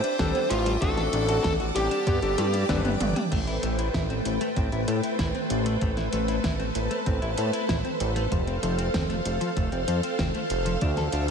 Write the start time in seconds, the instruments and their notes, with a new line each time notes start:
Already playing: lead electric guitar C5, string machine E5 G5 D6
0.04 clean electric guitar D4, closed hi-hat
0.19 analog synth bass A1, electric grand piano G3 C4 D4 A4, clean electric guitar D4, kick, snare, closed hi-hat
0.35 clean electric guitar B3, closed hi-hat
0.50 analog synth bass A1, lead electric guitar F4, closed hi-hat
0.66 clean electric guitar G3, closed hi-hat
0.81 analog synth bass A1, electric grand piano A3 C4 D4 F#4, clean electric guitar D4, lead electric guitar A4, string machine F#5 A5, kick, closed hi-hat
0.97 clean electric guitar A4, snare, closed hi-hat
1.13 analog synth bass A1, clean electric guitar D4, closed hi-hat
1.29 electric grand piano A3 C4 D4 F#4, clean electric guitar A4, closed hi-hat
1.44 analog synth bass A1, lead electric guitar A4, clean electric guitar A4, kick, snare, closed hi-hat
1.60 clean electric guitar F#4, closed hi-hat
1.75 analog synth bass A1, electric grand piano G3 C4 D4 G4, lead electric guitar G4, closed hi-hat
1.91 clean electric guitar D4, closed hi-hat
2.07 analog synth bass G2, clean electric guitar B3, string machine D5 G5, kick, closed hi-hat
2.22 analog synth bass G1, electric grand piano G3 C4 D4 A4, clean electric guitar D4, closed hi-hat
2.38 analog synth bass G2, clean electric guitar G3, closed hi-hat, high tom
2.54 clean electric guitar D4, closed hi-hat
2.69 analog synth bass G1, electric grand piano G3 C4 D4 B4, clean electric guitar D4, kick, snare, closed hi-hat, mid tom
2.85 clean electric guitar B3, closed hi-hat, mid tom
3.01 analog synth bass G1, closed hi-hat, mid tom
3.16 clean electric guitar G3, closed hi-hat, mid tom
3.32 analog synth bass A1, clean electric guitar A3, string machine A3 A4 B4 C5 G5, kick, closed hi-hat, crash
3.47 clean electric guitar E4, closed hi-hat
3.63 analog synth bass A1, clean electric guitar A3, closed hi-hat
3.78 clean electric guitar E4, closed hi-hat
3.94 analog synth bass A1, clean electric guitar E4, kick, snare, closed hi-hat
4.10 clean electric guitar C4, closed hi-hat
4.25 analog synth bass A1, closed hi-hat
4.41 clean electric guitar A3, closed hi-hat
4.56 analog synth bass A1, clean electric guitar C4, kick, closed hi-hat
4.72 analog synth bass A1, clean electric guitar E4, closed hi-hat
4.88 analog synth bass A2, clean electric guitar A3, closed hi-hat
5.03 clean electric guitar E4, closed hi-hat
5.19 analog synth bass A1, clean electric guitar E4, kick, snare, closed hi-hat
5.35 clean electric guitar C4, closed hi-hat
5.50 analog synth bass A1, closed hi-hat
5.66 clean electric guitar A3, closed hi-hat
5.81 analog synth bass A1, clean electric guitar A3, string machine A5, kick, closed hi-hat
5.97 clean electric guitar E4, snare, closed hi-hat
6.13 analog synth bass A1, clean electric guitar A3, closed hi-hat
6.28 clean electric guitar E4, closed hi-hat
6.44 analog synth bass A1, clean electric guitar E4, kick, snare, closed hi-hat
6.59 clean electric guitar C4, closed hi-hat
6.75 analog synth bass A1, closed hi-hat
6.91 clean electric guitar A3, closed hi-hat
7.06 analog synth bass A1, clean electric guitar C4, kick, closed hi-hat
7.22 analog synth bass A1, clean electric guitar E4, closed hi-hat
7.37 analog synth bass A2, clean electric guitar A3, closed hi-hat
7.53 clean electric guitar E4, closed hi-hat
7.69 analog synth bass A1, clean electric guitar E4, kick, snare, closed hi-hat
7.85 clean electric guitar C4, closed hi-hat
8.00 analog synth bass A1, closed hi-hat
8.16 clean electric guitar A3, closed hi-hat
8.32 analog synth bass F1, clean electric guitar F3, string machine F5, kick, closed hi-hat
8.47 clean electric guitar C4, closed hi-hat
8.63 analog synth bass F1, clean electric guitar F3, closed hi-hat
8.78 clean electric guitar C4, closed hi-hat
8.94 analog synth bass F1, clean electric guitar C4, kick, snare, closed hi-hat
9.10 clean electric guitar A3, closed hi-hat
9.25 analog synth bass F1, closed hi-hat
9.41 clean electric guitar F3, closed hi-hat
9.57 analog synth bass F1, clean electric guitar A3, kick, closed hi-hat
9.72 analog synth bass F1, clean electric guitar C4, closed hi-hat
9.88 analog synth bass F2, clean electric guitar F3, closed hi-hat
10.03 clean electric guitar C4, closed hi-hat
10.19 analog synth bass F1, clean electric guitar C4, kick, snare, closed hi-hat
10.35 clean electric guitar A3, closed hi-hat
10.50 analog synth bass F1, closed hi-hat
10.66 clean electric guitar F3, closed hi-hat
10.81 analog synth bass D2, string machine D4 E5, clean electric guitar D4, kick, closed hi-hat
10.97 clean electric guitar A4, snare, closed hi-hat
11.12 analog synth bass D2, clean electric guitar D4, closed hi-hat